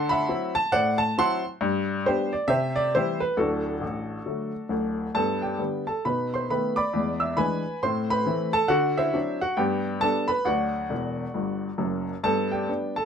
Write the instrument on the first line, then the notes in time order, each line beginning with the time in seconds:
upright piano
Already playing: D3 F#5 A5 C6
0.09 E5 F#5 B5
0.29 F#3 C4 E4
0.55 A5
0.72 A2 C5 D5 F#5
0.98 A5
1.18 F#3 C4 E4 F#5 A5 C6
1.61 G2
2.05 G3 B3 D4 G4 C5
2.33 D5
2.48 C3 G4 C5 E5
2.76 D5
2.95 E3 G3 C4 E4 G4 C5
3.20 B4
3.37 D1 D2 D4 F#4 A4
3.81 A1
4.26 D3 F#3 A3
4.69 D1 D2
5.15 G2 B3 A4 A5
5.42 G4 D5 G5
5.58 D3 G3 B3
5.87 A4 A5
6.05 B2 D#4 B4 B5
6.34 C5 C6
6.50 D#3 A3 B3 B4 B5
6.76 D5 B5 D6
6.93 E2 G#3
7.20 E5 E6
7.37 E3 G#3 D4 B4 G#5 B5
7.83 A2 C4 C5 C6
8.10 B4 B5
8.26 E3 A3 C4
8.53 A4 A5
8.68 D3 F#4 F#5
8.97 E4 C5 E5
9.14 F#3 C4 D4
9.41 F#4 F#5
9.57 G2 B3 G4 D5 G5
10.01 G3 B3 D4 A4 A5
10.28 B4 B5
10.45 D2 F#3 F#4 D5 F#5
10.90 E1 E2
11.34 G1 G2
11.78 F#1 F#2
12.24 G2 B3 A4 A5
12.51 G4 D5 G5
12.68 G3 B3 D4
12.96 A4 A5